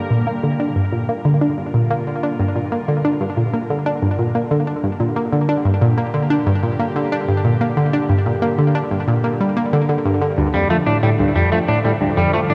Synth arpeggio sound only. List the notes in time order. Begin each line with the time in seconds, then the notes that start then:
0.11 A#2
0.27 A#3
0.44 D3
0.60 D4
0.76 G2
0.93 A#2
1.09 A#3
1.25 D3
1.41 D4
1.58 G2
1.74 A#2
1.90 A#3
2.07 D3
2.23 D4
2.39 G2
2.56 A#2
2.72 A#3
2.88 D3
3.05 D4
3.21 G2
3.37 A#2
3.54 A#3
3.70 D3
3.86 D4
4.02 G2
4.19 A#2
4.35 A#3
4.51 D3
4.67 D4
4.84 G2
5.00 A#2
5.16 A#3
5.33 D3
5.49 D4
5.65 G2
5.81 A#2
5.98 A#3
6.14 D3
6.30 D4
6.47 G2
6.63 A#2
6.79 A#3
6.96 D3
7.12 D4
7.28 G2
7.45 A#2
7.61 A#3
7.77 D3
7.93 D4
8.09 G2
8.26 A#2
8.42 A#3
8.59 D3
8.75 D4
8.91 G2
9.08 A#2
9.24 A#3
9.41 G3
9.57 A#3
9.73 D3
9.89 D3
10.06 G2
10.22 D3
10.38 D2
10.54 F2
10.71 F3
10.87 A2
11.03 A2
11.20 D2
11.36 F2
11.52 F3
11.69 A2
11.85 A2
12.01 D2
12.18 F2
12.34 F3
12.50 A2